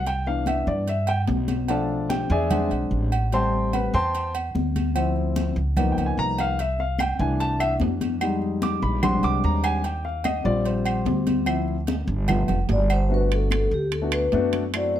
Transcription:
Already playing: C2
0.06 G5, high conga, low agogo
0.26 E3 B3 D4 F5, high conga
0.46 E5, high conga, low agogo
0.67 G2 D5, high conga
0.87 E5, high conga, low agogo
1.07 G5, high conga, low agogo
1.27 B1, high conga, low timbale
1.48 high conga, low agogo
1.68 F3 A3 D4 A4 D5 F5 A5, high conga, low agogo
1.89 high conga
2.10 G4 G5, high conga, low agogo
2.30 E2 G#4 D5 E5 G#5
2.50 G#3 C4 D4, high conga, low conga, low agogo
2.71 B1, high conga, low agogo
2.91 A1, high conga
3.12 high conga, low agogo
3.32 G3 A3 C4 C5 G5 A5 C6, high conga, low agogo
3.52 high conga
3.73 B4 B5, high conga, low agogo
3.94 E2 C5 G5 A5 C6, high conga
4.14 high conga, low agogo
4.35 high conga, low agogo
4.55 D2, high conga
4.76 high conga, low agogo
4.95 F3 C4 E4, high conga, low agogo
5.16 high conga
5.36 high conga, low agogo
5.56 C#2
5.77 F3 A#3 B3 D#4, high conga, low conga, low agogo
5.92 G5
5.97 C#2, high conga, low agogo
6.06 G#5
6.17 C2 A#5, high conga
6.38 F5, high conga, low agogo
6.59 E5, high conga, low agogo
6.79 F5, high conga
6.99 G5, high conga, low agogo, claves
7.19 C2 E3 A3 D4 G#5, high conga
7.39 A5, high conga, low agogo
7.60 E5, high conga, low agogo, claves
7.80 F2, high conga, low timbale
8.01 high conga, low agogo
8.21 G3 G#3 D#4, high conga, low agogo, claves
8.42 high conga
8.62 D6, high conga, low agogo
8.82 A#1 B5
9.03 G3 G#3 C4 D4 C6, high conga, low conga, low agogo, claves
9.23 C2 D6, high conga, low agogo
9.44 D#2 A#5, high conga
9.64 G#5, high conga, low agogo, claves
9.84 G5, high conga, low agogo
10.04 F5, high conga
10.24 D#5, high conga, low agogo, claves
10.44 A#1 G3 C4 F4 D5, high conga
10.65 C5, high conga, low agogo
10.86 high conga, low agogo, claves
11.05 D2, high conga, low timbale
11.27 high conga, low agogo
11.46 F3 C4 E4, high conga, low agogo, claves
11.68 high conga
11.87 high conga, low agogo
12.07 G1
12.28 A3 B3 F4, high conga, low conga, low agogo, claves
12.48 F1, high conga, low conga, low agogo
12.69 G1 D5, high conga, low timbale
12.90 C5, high conga, low agogo, claves
13.09 A3 B3 D4 F#4, high conga
13.14 B4
13.30 A4, high conga, high timbale
13.51 A4, high conga, high timbale, low timbale, claves
13.71 D2 G4, high conga
13.92 A4, high conga, high timbale
14.02 A3 B3 D4 F#4
14.12 B4, high conga, high timbale, claves
14.32 F#2 A3 B3 D4 F#4, high conga, low timbale
14.53 high conga, high timbale
14.74 A3 C4 E4 F#4 D5, high conga, high timbale, claves
14.94 C5, high conga

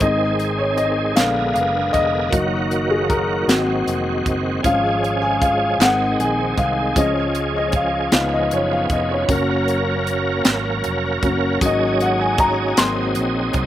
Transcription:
0.00 G#1 D#3 G#3 C4 D#4 G#4 D#5, kick, closed hi-hat
0.40 closed hi-hat
0.59 C#5
0.77 D#5, closed hi-hat
1.16 A#1 D3 G#3 B3 G#4 A#4 F5, snare, clap, closed hi-hat
1.54 F#1 F5, closed hi-hat
1.93 F1 D#5, kick, closed hi-hat
2.30 F#1 D#3 F#3 A#3 D#4 F#4, kick, closed hi-hat
2.71 closed hi-hat
2.90 G#4
3.10 A#4, kick, closed hi-hat
3.48 G#1 F#3 G#3 A#3 C4 F#4, snare, clap, closed hi-hat
3.87 F1, closed hi-hat
4.26 F#1, kick, closed hi-hat
4.63 G#1 F3 G#3 C#4 G#4 F5, kick, closed hi-hat
5.04 closed hi-hat
5.22 G#5
5.42 F5, kick, closed hi-hat
5.79 G#1 D#3 G#3 C4 F#5, snare, clap, closed hi-hat
6.19 A#1 G#5, closed hi-hat
6.58 C2 F5, kick, closed hi-hat
6.96 C#2 F3 G#3 C#4 D#5, kick, closed hi-hat
7.35 closed hi-hat
7.57 D#5
7.72 F5, kick, closed hi-hat
8.12 C#2 F3 B3 D#4 F5, snare, clap, closed hi-hat
8.34 D#5
8.51 F#1 C#5, closed hi-hat
8.73 F5
8.86 F5, closed hi-hat
8.90 F1 D#5, kick
9.11 C#5
9.28 F#1 F#3 A#3 C#4 A#4, kick, closed hi-hat
9.68 closed hi-hat
10.07 closed hi-hat
10.45 G#1, snare, clap, closed hi-hat
10.84 F1, closed hi-hat
11.23 F#1 F#3 A#3 C#4, kick, closed hi-hat
11.61 G#1 F#3 A#3 C#4 D#4 G#4, kick, closed hi-hat
11.66 D#5
12.00 F#5, closed hi-hat
12.21 G#5
12.38 A#5, kick, closed hi-hat
12.77 G#1 F#3 A#3 C4 G#4 C6, snare, clap, closed hi-hat
13.15 A#1, closed hi-hat
13.53 C2, kick, closed hi-hat

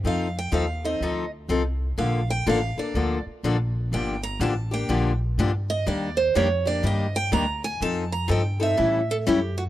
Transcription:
0.04 F2 F3 C4 D#4 A4 F5
0.39 G5
0.52 D#2 F3 C4 D#4 A4 F5
0.85 C4 D#4 A4 D#5
1.00 D2 F3 C4 D#4 A4
1.49 C2 F3 C4 D#4 A4
1.98 A#1 D3 F3 A#3 D4 A4 F5
2.30 G5
2.46 A1 D3 F3 A#3 D4 A4 F5
2.77 A#3 D4 A4 D5, muted upright bass stroke
2.94 D2 D3 F3 A#3 D4 A4
3.26 muted upright bass stroke
3.43 A#1 D3 F3 A#3 D4 A4
3.92 G1 D3 F3 A#3 D4 G4 G5
4.23 A#5
4.40 A1 D3 F3 A#3 D4 G4 A5
4.71 A#3 D4 G4 G5
4.89 A#1 D3 F3 A#3 D4 G4
5.38 G2 D3 F3 A#3 D4 G4
5.70 D#5
5.86 D#2 D#3 G3 A#3 D4 G4 D5
6.17 C5
6.35 F2 D#3 G3 A#3 D4 G4 C#5
6.65 A#3 D4 G4 D5
6.83 G2 D#3 G3 A#3 D4 G4 D#5
7.16 G5
7.32 D2 D#3 G3 A#3 D4 G4 A#5
7.64 G#5
7.80 F2 F3 C4 D#4 A4 A5
8.12 A#5
8.28 G2 F3 C4 D#4 A4 G5
8.60 C4 D#4 A4 E5
8.77 A2 E3 G3 C#4 E4 A4
9.11 A4
9.27 F#2 E3 G3 C#4 E4 G4 A4
9.58 F#4

